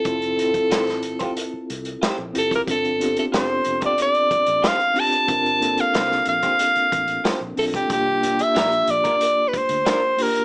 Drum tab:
HH |xxxxxxxxx-xxx-xx|xxxxx-xxxxxxxxox|xxxxx-xxxxxxx-ox|x-xxxxxxx-xxx-ox|
SD |----oo------o---|----o-------o---|----oo------o---|----o-------o---|
BD |o--o---o-------o|o------o--o-----|o------o--o----o|o------o--o-----|